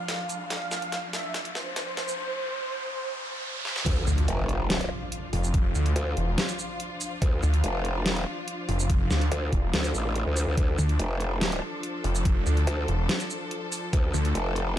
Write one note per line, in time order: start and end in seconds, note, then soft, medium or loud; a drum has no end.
0.00 2.14 F3 medium
0.00 2.14 D4 medium
0.00 2.14 F4 medium
0.00 0.42 F5 loud
0.00 riser medium
0.08 snare medium
0.08 closed hi-hat medium
0.29 closed hi-hat medium
0.29 shaker medium
0.50 1.05 F5 loud
0.50 snare medium
0.50 closed hi-hat medium
0.71 snare medium
0.71 shaker soft
0.82 closed hi-hat medium
0.92 snare medium
0.92 closed hi-hat medium
1.13 1.38 E5 medium
1.13 snare medium
1.13 open hi-hat medium
1.34 snare medium
1.34 closed hi-hat medium
1.45 closed hi-hat medium
1.55 3.78 C5 loud
1.55 snare medium
1.76 snare medium
1.76 closed hi-hat medium
1.97 snare medium
1.97 closed hi-hat medium
2.08 shaker medium
3.65 snare medium
3.76 snare medium
3.86 4.06 D2 loud
3.86 14.79 F3 medium
3.86 14.79 D4 medium
3.86 10.56 F4 medium
3.86 kick loud
3.86 closed hi-hat medium
3.86 crash loud
3.86 impact medium
4.07 4.26 D2 loud
4.07 shaker medium
4.18 closed hi-hat medium
4.28 4.89 F1 loud
4.28 closed hi-hat medium
4.49 closed hi-hat medium
4.70 snare loud
4.70 closed hi-hat medium
4.81 closed hi-hat medium
5.12 closed hi-hat medium
5.33 5.73 F1 medium
5.33 open hi-hat loud
5.44 shaker medium
5.54 kick loud
5.54 closed hi-hat medium
5.75 5.94 D2 loud
5.75 shaker medium
5.86 closed hi-hat medium
5.96 6.15 D2 medium
5.96 closed hi-hat medium
6.17 6.36 E1 loud
6.17 closed hi-hat medium
6.38 snare loud
6.38 closed hi-hat medium
6.49 closed hi-hat medium
6.49 shaker medium
6.59 shaker medium
6.80 closed hi-hat medium
7.01 open hi-hat loud
7.01 shaker medium
7.22 7.41 D2 loud
7.22 kick loud
7.22 closed hi-hat medium
7.43 7.62 D2 loud
7.43 shaker medium
7.54 closed hi-hat medium
7.64 8.07 F1 loud
7.64 closed hi-hat medium
7.85 closed hi-hat medium
8.06 8.25 E1 loud
8.06 snare loud
8.06 closed hi-hat medium
8.17 closed hi-hat medium
8.48 closed hi-hat medium
8.69 9.09 F1 medium
8.69 open hi-hat medium
8.79 shaker medium
8.90 kick loud
8.90 closed hi-hat medium
9.11 9.30 D2 loud
9.11 snare medium
9.11 shaker medium
9.21 closed hi-hat medium
9.32 9.51 D2 loud
9.32 closed hi-hat medium
9.53 9.72 E1 loud
9.53 kick medium
9.53 closed hi-hat medium
9.74 9.93 D2 loud
9.74 snare loud
9.74 closed hi-hat medium
9.84 closed hi-hat medium
9.84 shaker medium
9.95 10.25 A1 loud
9.95 shaker medium
10.16 closed hi-hat medium
10.26 10.46 D2 loud
10.37 open hi-hat medium
10.37 shaker medium
10.47 10.56 D2 medium
10.57 10.77 D2 loud
10.57 14.79 A4 medium
10.57 kick loud
10.57 closed hi-hat medium
10.78 10.98 D2 medium
10.78 shaker medium
10.89 closed hi-hat soft
10.99 11.61 F1 loud
10.99 closed hi-hat medium
11.20 closed hi-hat medium
11.41 snare loud
11.41 closed hi-hat medium
11.52 closed hi-hat medium
11.83 closed hi-hat medium
12.04 12.45 F1 loud
12.04 open hi-hat medium
12.15 shaker medium
12.25 kick loud
12.25 closed hi-hat medium
12.46 12.66 D2 medium
12.46 shaker medium
12.57 closed hi-hat medium
12.67 12.87 D2 loud
12.67 closed hi-hat medium
12.88 13.08 E1 loud
12.88 closed hi-hat medium
13.09 snare loud
13.09 closed hi-hat medium
13.20 closed hi-hat medium
13.20 shaker medium
13.30 shaker medium
13.51 closed hi-hat medium
13.72 open hi-hat medium
13.72 shaker medium
13.93 14.12 D2 loud
13.93 kick loud
13.93 closed hi-hat medium
14.14 14.33 D2 loud
14.14 shaker medium
14.25 closed hi-hat medium
14.35 14.78 F1 loud
14.35 closed hi-hat medium
14.56 closed hi-hat medium